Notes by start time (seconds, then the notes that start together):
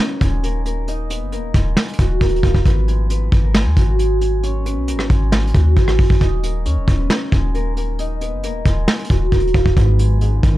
Already playing: C#4 D#4 F#4 G#4 C#5 D#5
0.00 A#3 A#4
0.21 D#1 G#3 G#4, kick, closed hi-hat
0.43 A#3 A#4, closed hi-hat
0.66 A#3 A#4, closed hi-hat
0.88 D#4 D#5, closed hi-hat
1.10 B3 B4, closed hi-hat
1.21 F#1
1.32 A#3 A#4, closed hi-hat
1.38 D#1
1.54 D#1 G#3 G#4, kick, closed hi-hat
1.77 snare, closed hi-hat
1.82 closed hi-hat
1.88 closed hi-hat
1.93 closed hi-hat
1.99 D#1 F#3 F#4, kick, closed hi-hat
2.21 D#1 A#3 A#4, kick, closed hi-hat
2.29 closed hi-hat
2.36 closed hi-hat
2.43 D#1 F3 F4, kick, closed hi-hat
2.55 D#1, kick
2.66 G#1 B3 B4, kick, closed hi-hat
2.88 G#3 G#4, closed hi-hat
3.10 B3 B4, closed hi-hat
3.32 G#1, kick, closed hi-hat
3.44 A#3 A#4
3.54 G#3 G#4, snare, closed hi-hat
3.66 D#2
3.77 G#1 F#3 F#4, kick, closed hi-hat
3.99 G#3 G#4, closed hi-hat
4.21 G#3 G#4, closed hi-hat
4.43 C#4 C#5, closed hi-hat
4.65 B3 B4, closed hi-hat
4.77 B1
4.88 A#3 A#4, closed hi-hat
4.93 G#1
4.99 cross-stick
5.10 G#1 G#3 G#4, kick, closed hi-hat
5.32 snare, closed hi-hat
5.40 closed hi-hat
5.47 closed hi-hat
5.54 D#2 F#3 F#4, kick, closed hi-hat
5.77 G#1 G#3 G#4, kick, closed hi-hat
5.88 cross-stick
5.99 G#1, kick, open hi-hat
6.10 G#1, kick
6.21 D#1 D#4 D#5, kick, closed hi-hat
6.43 A#3 A#4, closed hi-hat
6.65 D#2 C#4 C#5, closed hi-hat
6.77 D#1
6.88 D#1, kick, closed hi-hat
6.99 B3 B4
7.10 A#3 A#4, snare, closed hi-hat
7.32 D#1 G#3 G#4, kick, closed hi-hat
7.54 A#3 A#4, closed hi-hat
7.77 A#3 A#4, closed hi-hat
7.99 D#4 D#5, closed hi-hat
8.21 B3 B4, closed hi-hat
8.32 F#1
8.43 A#3 A#4, closed hi-hat
8.49 D#1
8.65 D#1 G#3 G#4, kick, closed hi-hat
8.88 snare, closed hi-hat
8.93 closed hi-hat
8.99 closed hi-hat
9.04 closed hi-hat
9.10 D#1 F#3 F#4, kick, closed hi-hat
9.32 D#1 A#3 A#4, kick, closed hi-hat
9.40 closed hi-hat
9.47 closed hi-hat
9.54 D#1 F3 F4, kick, closed hi-hat
9.66 D#1, kick
9.77 G#1 G#2 B3 B4, kick, closed hi-hat
9.99 G#3 G#4, closed hi-hat
10.21 G#2 B3 B4, closed hi-hat
10.43 G#1 D#3, kick, closed hi-hat
10.55 A#4